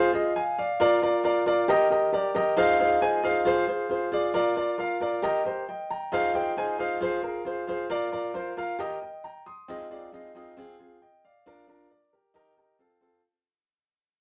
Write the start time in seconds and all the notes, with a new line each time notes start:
0.13 F4 G#4 D#5
0.36 F5 G#5
0.58 D5 F5
0.80 F4 A#4 D5
1.02 F4 A#4 D5
1.24 F4 A#4 D5
1.46 F4 A#4 D5
1.68 G4 A#4 D#5
1.90 G4 A#4 D#5
2.13 G4 A#4 D5
2.35 G4 A#4 D#5
2.57 D#4 F4 G#4 C5 F5
2.79 D#4 F4 G#4 C5 F5
3.01 D#4 F4 G#4 C5 G#5
3.23 D#4 F4 G#4 C5 F5
3.45 F4 G#4 C5
3.68 G#4 C5
3.89 F4 G#4 C5
4.12 F4 G#4 D5
4.34 F4 A#4 D5
4.56 F4 A#4 D5
4.78 F4 A#4 F5
5.00 F4 A#4 D5
5.22 G4 A#4 D#5
5.45 G4 A#4 C5
5.69 D#5 G5
5.90 G5 A#5
6.12 D#4 F4 G#4 C5 F5
6.34 D#4 F4 G#4 C5 G5
6.57 D#4 F4 G#4 C5 G#5
6.78 D#4 F4 G#4 C5 F5
7.01 F4 G#4 C5
7.22 F4 G#4 A#4
7.45 F4 G#4 C5
7.67 F4 G#4 C5
7.90 F4 A#4 D5
8.12 F4 A#4 D5
8.34 F4 A#4 C5
8.57 F4 A#4 F5
8.79 G4 A#4 D#5
9.24 G5 A#5
9.46 C6 D#6
9.68 C4 D#4 F4 G#4 D#5
9.90 C4 D#4 F4 G#4 D5
10.12 C4 D#4 F4 G#4 D#5
10.35 C4 D#4 F4 G#4 D#5
10.57 C4 F4 G#4
10.79 C4 F4 G#4
11.02 D#5 G5
11.25 D5 F5
11.46 D4 F4 A#4
11.67 D4 F4 A#4
11.90 A#4 D5
12.13 G4 A#4
12.34 D#4 G4 A#4
12.57 D#4 G4 A#4
12.79 C4 F4 A4
13.01 C4 F4 A4